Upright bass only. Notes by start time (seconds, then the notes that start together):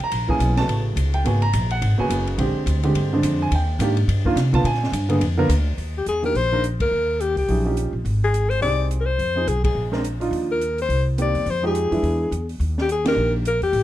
0.12 A#1
0.39 B1
0.67 A1
0.96 C#2
1.24 G#1
1.54 A#1
1.81 G#1
1.99 muted upright bass stroke
2.09 F#1
2.38 A#1
2.54 muted upright bass stroke
2.66 D2
2.95 G2
3.22 F2
3.51 D#2
3.79 G#2
4.08 G2
4.36 C3
4.64 A#2
4.92 G2
5.21 F2
5.49 D2
5.78 D#2
6.06 E2
6.34 A#1
6.80 D2
6.91 D#2
7.36 C#2
7.48 A#1
7.93 A#1
8.05 G#1
8.62 C2
9.18 F2
9.47 B1
9.75 A#1
10.31 D#2
10.89 C2
11.34 E2
11.46 F2
11.91 F2
12.03 E2
12.31 E2
12.60 D#2
13.16 A#1
13.61 E2
13.73 A1